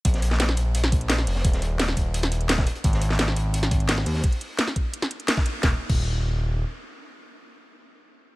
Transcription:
<<
  \new Staff \with { instrumentName = "Analog synth bass" } { \clef bass \time 4/4 \key bes \phrygian \tempo 4 = 172 bes,,4. bes,,2 f,,8 | ees,,4. ees,,2 r8 | aes,,4. aes,,2 ees,8 | r1 |
ees,,16 r8 ees,,2~ ees,,16 r4 | r1 | }
  \new DrumStaff \with { instrumentName = "Drums" } \drummode { \time 4/4 <hh bd>16 <hh sn>16 hh16 sn16 <hh sn>16 sn16 hh8 hh16 <hh sn>16 <hh bd>16 hh16 <hh sn>16 sn16 <hh hho>16 sn16 | <hh bd>16 <hh sn>16 hh8 <hh sn>16 sn16 <hh bd>8 hh16 <hh sn>16 hh16 hh16 <hh sn>16 <bd sn>16 hh16 hh16 | <hh bd>16 <hh sn>16 hh16 sn16 <hh sn>16 sn16 hh8 hh16 <hh sn>16 <hh bd>16 hh16 <hh sn>16 sn16 <hh hho>16 sn16 | <hh bd>16 hh16 hh8 <hh sn>16 sn16 <hh bd>8 hh16 <hh sn>16 hh16 hh16 <hh sn>16 <bd sn>16 hh8 |
<bd sn>8. <cymc bd>16 r4 r4 r4 | r4 r4 r4 r4 | }
>>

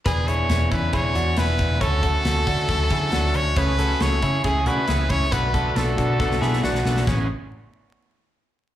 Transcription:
<<
  \new Staff \with { instrumentName = "Trumpet" } { \time 4/4 \key a \major \tempo 4 = 137 gis'8 cis''4 b'8 cis''4 b'4 | a'2.~ a'8 cis''8 | b'4 cis''4 gis'8 b'4 cis''8 | b'4 a'2 r4 |
r1 | }
  \new Staff \with { instrumentName = "Clean electric guitar" } { \time 4/4 \key a \major <gis' b'>8 <e' gis'>4 <cis' e'>8 <e' gis'>8 <d' fis'>8 <b e'>4 | <a' cis''>8 <fis' a'>4 <d' fis'>8 <fis' a'>8 <e' gis'>8 <d' fis'>4 | <a' cis''>8 <fis' a'>4 <cis' e'>8 <e' gis'>8 <d' fis'>8 <cis' e'>4 | <fis' b'>8 <fis' a'>4 <d' fis'>8 <fis' a'>8 <e' gis'>8 <d' fis'>4 |
cis'8 r2. r8 | }
  \new Staff \with { instrumentName = "Transistor combo organ" } { \time 4/4 \key a \major << { r1 | r1 | r1 | r2 r8 b''8 fis''4 |
r1 | } \\ { r1 | r1 | <a cis' gis'>8 <a cis' gis'>8 <a cis' gis'>8 <a cis' gis'>8 <a cis' gis'>8 <a cis' gis'>8 <a cis' gis'>8 <a cis' gis'>8 | <b d' a'>8 <b d' a'>8 <b d' a'>8 <b d' a'>8 <b d' a'>8 <b d' a'>8 <b d' fis'>8 <b d' a'>8 |
<b cis' gis'>8 r2. r8 | } >> }
  \new Staff \with { instrumentName = "Overdriven electric guitar" } { \time 4/4 \key a \major <e b d' gis'>8 <b d' gis'>8 <e b d' gis'>8 <b d' gis'>8 <e b d' gis'>4 <e b d' gis'>4 | <d fis a cis' fis'>8 <a cis' fis'>8 <fis a cis' fis'>8 <a cis' fis'>8 <d fis a cis' fis'>4 <fis a cis' fis'>8 <a cis' fis'>8 | <cis e a cis' gis'>8 <a cis' gis'>8 <e a cis' gis'>8 <a cis' gis'>8 <cis e a cis' gis'>4 <e a cis' gis'>8 <a cis' gis'>8 | <b, fis a d' fis'>8 <a d' fis'>8 <fis a d' fis'>8 <a d' fis'>8 <b, fis a d' fis'>4 <fis a d' fis'>8 <a d' fis'>8 |
<a b e' gis' cis''>8 r2. r8 | }
  \new Staff \with { instrumentName = "Picked electric bass" } { \clef bass \time 4/4 \key a \major e,,4 e,,8 e,8 e,,8 e,8 e,,8 e,,8 | d,4 d,8 d8 d,8 d8 d,8 d,8 | cis,4 cis,8 cis8 cis,8 cis8 cis,8 cis,8 | b,,4 b,,8 b,8 b,,8 b,8 b,,8 b,,8 |
a,,8 r2. r8 | }
  \new DrumStaff \with { instrumentName = "Drums" } \drummode { \time 4/4 <hh bd>8 hh8 <hh sn>8 <hh bd>8 <hh bd>8 hh8 <hh sn>8 <hh bd>8 | <hh bd>8 <hh bd>8 <hh sn>8 <hh bd>8 <hh bd>8 <hh bd>8 <hh sn>8 hh8 | <hh bd>8 hh8 <hh sn>8 <hh bd>8 <hh bd>8 hh8 <hh sn>8 <hh bd>8 | <hh bd>8 <hh bd>8 <hh sn>8 <hh bd>8 <bd sn>16 sn16 sn16 sn16 sn16 sn16 sn16 sn16 |
<bd sn>4 r4 r4 r4 | }
>>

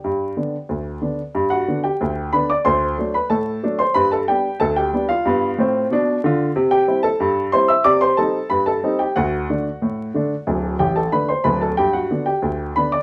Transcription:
<<
  \new Staff \with { instrumentName = "Upright piano" } { \time 2/4 \key g \major \tempo 4 = 92 <g' g''>4. r8 | r16 <fis' fis''>8 <g' g''>8. <b' b''>16 <d'' d'''>16 | <c'' c'''>8. <b' b''>16 <a' a''>8. <c'' c'''>16 | <b' b''>16 <a' a''>16 <g' g''>8 <a' a''>16 <g' g''>8 <f' f''>16~ |
<f' f''>2 | r16 <g' g''>8 <a' a''>8. <c'' c'''>16 <e'' e'''>16 | <d'' d'''>16 <c'' c'''>16 <a' a''>8 <b' b''>16 <a' a''>8 <g' g''>16 | <fis' fis''>2~ |
<fis' fis''>8 <g' g''>16 <a' a''>16 <b' b''>16 <c'' c'''>16 <b' b''>16 <a' a''>16 | <g' g''>16 <fis' fis''>8 <g' g''>8. <b' b''>16 <d'' d'''>16 | }
  \new Staff \with { instrumentName = "Upright piano" } { \clef bass \time 2/4 \key g \major g,8 <d b d'>8 d,8 <d b d'>8 | g,8 <d b d'>8 d,8 <d b d'>8 | d,8 <fis a d'>8 a,8 <fis a d'>8 | g,8 <g b d'>8 d,8 <g b d'>8 |
<g, b>8 <a, c'>8 <b, d'>8 <d f'>8 | c8 <g c' e'>8 g,8 <g c' e'>8 | c8 <g c' ees'>8 g,8 <g c' ees'>8 | d,8 <d a d'>8 a,8 <d a d'>8 |
<d,, d,>8 a,,8 <d a d'>8 <d,, d,>8 | g,8 <d b d'>8 d,8 <d b d'>8 | }
>>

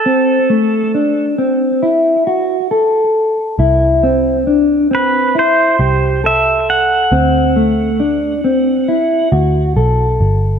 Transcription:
<<
  \new Staff \with { instrumentName = "Pedal steel guitar" } { \time 4/4 \key d \mixolydian \tempo 4 = 68 a'4 r2. | r4. b'8 c''4 e''8 fis''8~ | fis''2~ fis''8 r4. | }
  \new Staff \with { instrumentName = "Clean electric guitar" } { \time 4/4 \key d \mixolydian c'8 a8 d'8 c'8 e'8 fis'8 a'4 | e'8 c'8 d'8 c'8 e'8 g'8 a'4 | c'8 a8 d'8 c'8 e'8 fis'8 a'4 | }
  \new Staff \with { instrumentName = "Picked electric bass" } { \clef bass \time 4/4 \key d \mixolydian r1 | c,2~ c,8 c,4. | d,2~ d,8 d,8 b,,8 g,,8 | }
>>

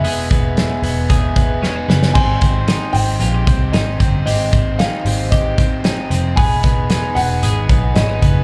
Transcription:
<<
  \new Staff \with { instrumentName = "Glockenspiel" } { \time 4/4 \key aes \major \tempo 4 = 114 r1 | c'''1~ | c'''1 | b''1 | }
  \new Staff \with { instrumentName = "Upright piano" } { \time 4/4 \key aes \major e''2. r4 | aes''4. g''4. ees''4 | ees''4 f''4 ees''4. r8 | gis''4. ges''4. dis''4 | }
  \new Staff \with { instrumentName = "Overdriven electric guitar" } { \time 4/4 \key aes \major <e gis b dis' gis'>8 <b dis' gis'>8 <gis b dis' gis'>8 <b dis' gis'>8 <e gis b dis' gis'>8 <b dis' gis'>8 <gis b dis' gis'>8 <b dis' gis'>8 | <aes c' ees' g'>8 <c' ees' g'>8 <aes c' ees' g'>8 <c' ees' g'>8 <aes c' ees' g'>8 <c' ees' g'>8 <aes c' ees' g'>8 <c' ees' g'>8 | <aes c' ees' g'>8 <c' ees' g'>8 <aes c' ees' g'>8 <c' ees' g'>8 <aes c' ees' g'>8 <c' ees' g'>8 <aes c' ees' g'>8 <c' ees' g'>8 | <e gis b dis' gis'>8 <b dis' gis'>8 <gis b dis' gis'>8 <b dis' gis'>8 <e gis b dis' gis'>8 <b dis' gis'>8 <gis b dis' gis'>8 <b dis' gis'>8 | }
  \new Staff \with { instrumentName = "Clean electric guitar" } { \time 4/4 \key aes \major <b gis'>8 b4 b8 gis'8 b8 des'16 dis'16 b8 | c'8 c'8 ees'8 c'8 f'16 g'16 c'8 ees'8 c'8 | <c' g'>8 c'8 ees'8 c'8 g'8 c'8 ees'8 c'8 | <b gis'>8 b8 dis'8 b8 gis'8 b8 des'16 dis'16 b8 | }
  \new Staff \with { instrumentName = "Picked electric bass" } { \clef bass \time 4/4 \key aes \major e,,8 e,,8. r16 e,,2 ges,,8 | aes,,8 aes,,8. r16 aes,,8 bes,,8 c,8 aes,,8 g,,8 | aes,,8 aes,,8. r16 aes,,2 f,,8 | e,,8 e,,8. r16 e,,8 gis,,8 b,,8 gis,,8 ges,,8 | }
  \new DrumStaff \with { instrumentName = "Drums" } \drummode { \time 4/4 <hho hhp>8 <hho hhp bd>8 <hho hhp sn>8 <hho hhp>8 <hho hhp bd>8 <hho hhp bd>8 sn8 sn16 sn16 | <cymc bd>8 <hho hhp bd>8 <hho hhp sn>8 <hho hhp>8 <hho hhp>8 <hho hhp bd>8 <hho hhp sn>8 <hho hhp bd>8 | <hho hhp>8 <hho hhp bd>8 <hho hhp sn>8 <hho hhp>8 <hho hhp bd>8 <hho hhp bd>8 <hho hhp sn>8 <hho hhp>8 | <hho hhp bd>8 <hho hhp bd>8 <hho hhp sn>8 <hho hhp>8 <hho hhp>8 <hho hhp bd>8 <hho hhp sn>8 <hho hhp bd>8 | }
>>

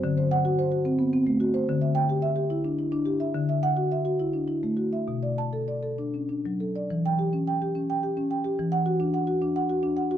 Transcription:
\new Staff \with { instrumentName = "Marimba" } { \time 3/4 \key e \minor \tempo 4 = 108 << { r8 fis''8 r2 | r8 g''8 r2 | r8 fis''8 r2 | r8 a''8 r2 |
r16 g''8 r2 r16 | r16 fis''8 r2 r16 | } \\ { d16 c''8 fis'16 c''16 fis'16 c'16 b16 c'16 a16 fis'16 c''16 | d16 e''8 g'16 e''16 g'16 e'16 d'16 e'16 d'16 g'16 e''16 | d16 e''8 fis'16 e''16 fis'16 e'16 d'16 e'16 a16 fis'16 e''16 | b,16 d''8 a'16 d''16 a'16 d'16 cis'16 d'16 fis16 a'16 d''16 |
e8 g'16 cis'16 g''16 g'16 cis'16 g''16 g'16 cis'16 g''16 g'16 | e8 fis'16 d'16 fis''16 fis'16 d'16 fis''16 fis'16 d'16 fis''16 fis'16 | } >> }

